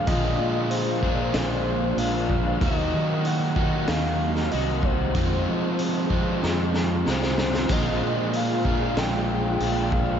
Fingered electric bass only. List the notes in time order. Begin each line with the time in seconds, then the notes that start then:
0.07 A#1
0.39 A#2
1.35 A#1
1.97 A#1
2.62 D#2
2.94 D#3
3.89 D#2
4.53 C2
5.15 F2
5.48 F3
6.44 F2
7.07 C2
7.70 A#1
8.02 A#2
8.97 A#1
9.60 A#1